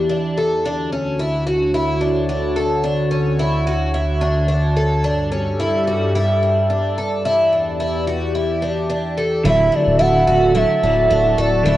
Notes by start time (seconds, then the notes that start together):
Already playing: E2 E3 G4 D5
0.10 D4
0.38 A4
0.66 D2 D3 D4 F#4 C#5
0.93 C#4
1.20 E4
1.47 F#4
1.74 E4
2.01 D4
2.29 D4
2.56 A4
2.84 D4
3.11 C#4
3.39 E4
3.67 F#4
3.94 E4
4.21 D4
4.48 D4
4.76 A4
5.04 G2 G3 D4 A4 D5
5.31 C#4
5.59 E4
5.87 F#4
6.15 E4
6.43 D4
6.70 D4
6.98 A4
7.25 E2 E3 E4 G4
7.53 D4
7.80 E4
8.07 F#4
8.35 E4
8.62 D4
8.90 D4
9.18 A4
9.44 D1 D3 F#3 A3 E4 F#4 A4 E5 A5
9.49 E4 E5
9.72 D4 D5
9.87 D1
9.99 D1 E4 F#5
10.27 D1 F#4
10.54 D3 F#3 A3 E4 E5
10.83 D1 F#3 A3 D4 E4
11.10 D1 D4
11.37 D1 A4 D5
11.63 D1 D3 F#3 A3 E4 F#5
11.68 E4